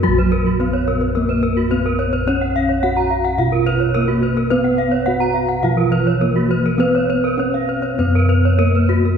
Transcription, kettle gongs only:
0, 0, Header, 1, 2, 480
1, 0, Start_track
1, 0, Tempo, 559701
1, 33, Time_signature, 4, 2, 24, 8
1, 4834, Tempo, 585366
1, 6274, Tempo, 610998
1, 7675, End_track
2, 0, Start_track
2, 0, Title_t, "Kettle gongs"
2, 0, Program_c, 0, 14
2, 0, Note_on_c, 0, 42, 62
2, 25, Note_on_c, 0, 66, 61
2, 67, Note_on_c, 0, 34, 101
2, 477, Note_off_c, 0, 42, 0
2, 505, Note_on_c, 0, 59, 41
2, 574, Note_off_c, 0, 59, 0
2, 1430, Note_off_c, 0, 66, 0
2, 1470, Note_on_c, 0, 59, 50
2, 1538, Note_off_c, 0, 59, 0
2, 1946, Note_on_c, 0, 61, 61
2, 2423, Note_on_c, 0, 59, 39
2, 2491, Note_off_c, 0, 59, 0
2, 2888, Note_off_c, 0, 34, 0
2, 2903, Note_on_c, 0, 47, 69
2, 3349, Note_off_c, 0, 61, 0
2, 3392, Note_on_c, 0, 59, 51
2, 3460, Note_off_c, 0, 59, 0
2, 3870, Note_on_c, 0, 71, 60
2, 4308, Note_off_c, 0, 47, 0
2, 4348, Note_on_c, 0, 59, 45
2, 4417, Note_off_c, 0, 59, 0
2, 4832, Note_on_c, 0, 47, 61
2, 5277, Note_off_c, 0, 71, 0
2, 5305, Note_on_c, 0, 59, 46
2, 5370, Note_off_c, 0, 59, 0
2, 5785, Note_on_c, 0, 71, 64
2, 6240, Note_off_c, 0, 47, 0
2, 6275, Note_on_c, 0, 59, 42
2, 6338, Note_off_c, 0, 59, 0
2, 6742, Note_on_c, 0, 42, 71
2, 7194, Note_off_c, 0, 71, 0
2, 7221, Note_on_c, 0, 59, 48
2, 7284, Note_off_c, 0, 59, 0
2, 7675, Note_off_c, 0, 42, 0
2, 7675, End_track
0, 0, End_of_file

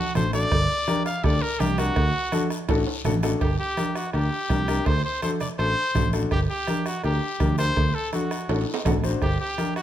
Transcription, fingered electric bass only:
0, 0, Header, 1, 2, 480
1, 0, Start_track
1, 0, Key_signature, -2, "minor"
1, 0, Tempo, 362757
1, 680, Time_signature, 4, 2, 24, 8
1, 12998, End_track
2, 0, Start_track
2, 0, Title_t, "Fingered electric bass"
2, 0, Program_c, 0, 33
2, 206, Note_on_c, 0, 33, 94
2, 587, Note_off_c, 0, 33, 0
2, 683, Note_on_c, 0, 31, 119
2, 874, Note_off_c, 0, 31, 0
2, 1641, Note_on_c, 0, 38, 102
2, 1832, Note_off_c, 0, 38, 0
2, 2121, Note_on_c, 0, 36, 105
2, 2503, Note_off_c, 0, 36, 0
2, 2600, Note_on_c, 0, 38, 107
2, 2790, Note_off_c, 0, 38, 0
2, 3558, Note_on_c, 0, 33, 102
2, 3748, Note_off_c, 0, 33, 0
2, 4033, Note_on_c, 0, 33, 100
2, 4417, Note_off_c, 0, 33, 0
2, 4516, Note_on_c, 0, 31, 99
2, 4708, Note_off_c, 0, 31, 0
2, 5477, Note_on_c, 0, 38, 87
2, 5668, Note_off_c, 0, 38, 0
2, 5955, Note_on_c, 0, 36, 99
2, 6339, Note_off_c, 0, 36, 0
2, 6436, Note_on_c, 0, 38, 107
2, 6628, Note_off_c, 0, 38, 0
2, 7397, Note_on_c, 0, 33, 88
2, 7588, Note_off_c, 0, 33, 0
2, 7877, Note_on_c, 0, 33, 96
2, 8261, Note_off_c, 0, 33, 0
2, 8356, Note_on_c, 0, 31, 110
2, 8548, Note_off_c, 0, 31, 0
2, 9320, Note_on_c, 0, 38, 92
2, 9511, Note_off_c, 0, 38, 0
2, 9797, Note_on_c, 0, 38, 100
2, 10182, Note_off_c, 0, 38, 0
2, 10280, Note_on_c, 0, 38, 103
2, 10472, Note_off_c, 0, 38, 0
2, 11236, Note_on_c, 0, 33, 93
2, 11430, Note_off_c, 0, 33, 0
2, 11719, Note_on_c, 0, 33, 99
2, 12104, Note_off_c, 0, 33, 0
2, 12199, Note_on_c, 0, 31, 106
2, 12392, Note_off_c, 0, 31, 0
2, 12998, End_track
0, 0, End_of_file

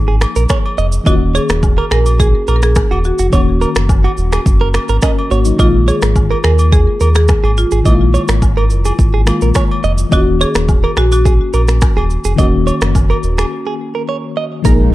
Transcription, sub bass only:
0, 0, Header, 1, 2, 480
1, 0, Start_track
1, 0, Key_signature, -6, "minor"
1, 0, Tempo, 566038
1, 902, Time_signature, 4, 2, 24, 8
1, 12673, End_track
2, 0, Start_track
2, 0, Title_t, "Sub bass"
2, 0, Program_c, 0, 38
2, 0, Note_on_c, 0, 32, 97
2, 219, Note_off_c, 0, 32, 0
2, 306, Note_on_c, 0, 34, 92
2, 394, Note_off_c, 0, 34, 0
2, 661, Note_on_c, 0, 29, 98
2, 844, Note_off_c, 0, 29, 0
2, 901, Note_on_c, 0, 27, 112
2, 1179, Note_off_c, 0, 27, 0
2, 1267, Note_on_c, 0, 27, 87
2, 1537, Note_off_c, 0, 27, 0
2, 1622, Note_on_c, 0, 34, 90
2, 1988, Note_off_c, 0, 34, 0
2, 2104, Note_on_c, 0, 34, 92
2, 2381, Note_off_c, 0, 34, 0
2, 2467, Note_on_c, 0, 27, 84
2, 2650, Note_off_c, 0, 27, 0
2, 2707, Note_on_c, 0, 29, 90
2, 2794, Note_off_c, 0, 29, 0
2, 2821, Note_on_c, 0, 27, 109
2, 3099, Note_off_c, 0, 27, 0
2, 3188, Note_on_c, 0, 30, 91
2, 3458, Note_off_c, 0, 30, 0
2, 3542, Note_on_c, 0, 27, 93
2, 3725, Note_off_c, 0, 27, 0
2, 3782, Note_on_c, 0, 30, 94
2, 4060, Note_off_c, 0, 30, 0
2, 4147, Note_on_c, 0, 32, 88
2, 4234, Note_off_c, 0, 32, 0
2, 4503, Note_on_c, 0, 32, 87
2, 4685, Note_off_c, 0, 32, 0
2, 4741, Note_on_c, 0, 34, 104
2, 5019, Note_off_c, 0, 34, 0
2, 5108, Note_on_c, 0, 32, 85
2, 5378, Note_off_c, 0, 32, 0
2, 5462, Note_on_c, 0, 39, 88
2, 5827, Note_off_c, 0, 39, 0
2, 5941, Note_on_c, 0, 39, 91
2, 6219, Note_off_c, 0, 39, 0
2, 6306, Note_on_c, 0, 32, 87
2, 6489, Note_off_c, 0, 32, 0
2, 6547, Note_on_c, 0, 32, 94
2, 6635, Note_off_c, 0, 32, 0
2, 6661, Note_on_c, 0, 34, 107
2, 6939, Note_off_c, 0, 34, 0
2, 7026, Note_on_c, 0, 32, 89
2, 7382, Note_on_c, 0, 29, 93
2, 7394, Note_off_c, 0, 32, 0
2, 7564, Note_off_c, 0, 29, 0
2, 7621, Note_on_c, 0, 32, 95
2, 7899, Note_off_c, 0, 32, 0
2, 7988, Note_on_c, 0, 34, 94
2, 8075, Note_off_c, 0, 34, 0
2, 8342, Note_on_c, 0, 29, 97
2, 8525, Note_off_c, 0, 29, 0
2, 8582, Note_on_c, 0, 27, 113
2, 8859, Note_off_c, 0, 27, 0
2, 8947, Note_on_c, 0, 27, 84
2, 9217, Note_off_c, 0, 27, 0
2, 9302, Note_on_c, 0, 34, 88
2, 9668, Note_off_c, 0, 34, 0
2, 9783, Note_on_c, 0, 34, 96
2, 10060, Note_off_c, 0, 34, 0
2, 10147, Note_on_c, 0, 27, 80
2, 10330, Note_off_c, 0, 27, 0
2, 10386, Note_on_c, 0, 29, 87
2, 10474, Note_off_c, 0, 29, 0
2, 10502, Note_on_c, 0, 27, 104
2, 10779, Note_off_c, 0, 27, 0
2, 10866, Note_on_c, 0, 30, 89
2, 11137, Note_off_c, 0, 30, 0
2, 11221, Note_on_c, 0, 27, 90
2, 11404, Note_off_c, 0, 27, 0
2, 12421, Note_on_c, 0, 34, 111
2, 12673, Note_off_c, 0, 34, 0
2, 12673, End_track
0, 0, End_of_file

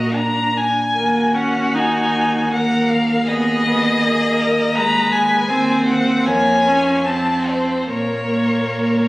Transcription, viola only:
0, 0, Header, 1, 2, 480
1, 0, Start_track
1, 0, Tempo, 817439
1, 564, Time_signature, 3, 2, 24, 8
1, 564, Tempo, 782269
1, 1524, Tempo, 749064
1, 3924, Tempo, 804290
1, 4404, Tempo, 860832
1, 5523, End_track
2, 0, Start_track
2, 0, Title_t, "Viola"
2, 0, Program_c, 0, 41
2, 0, Note_on_c, 0, 66, 42
2, 60, Note_off_c, 0, 66, 0
2, 81, Note_on_c, 0, 62, 35
2, 418, Note_off_c, 0, 62, 0
2, 564, Note_on_c, 0, 58, 40
2, 799, Note_on_c, 0, 61, 41
2, 808, Note_off_c, 0, 58, 0
2, 1049, Note_on_c, 0, 63, 38
2, 1058, Note_off_c, 0, 61, 0
2, 1524, Note_off_c, 0, 63, 0
2, 1529, Note_on_c, 0, 58, 42
2, 2010, Note_on_c, 0, 59, 45
2, 2019, Note_off_c, 0, 58, 0
2, 2248, Note_off_c, 0, 59, 0
2, 2254, Note_on_c, 0, 59, 42
2, 2494, Note_on_c, 0, 58, 47
2, 2504, Note_off_c, 0, 59, 0
2, 2968, Note_on_c, 0, 56, 52
2, 2978, Note_off_c, 0, 58, 0
2, 3433, Note_on_c, 0, 60, 55
2, 3443, Note_off_c, 0, 56, 0
2, 3925, Note_on_c, 0, 58, 64
2, 3934, Note_off_c, 0, 60, 0
2, 4164, Note_on_c, 0, 61, 61
2, 4173, Note_off_c, 0, 58, 0
2, 4401, Note_off_c, 0, 61, 0
2, 4405, Note_on_c, 0, 60, 50
2, 4871, Note_off_c, 0, 60, 0
2, 4880, Note_on_c, 0, 58, 42
2, 5523, Note_off_c, 0, 58, 0
2, 5523, End_track
0, 0, End_of_file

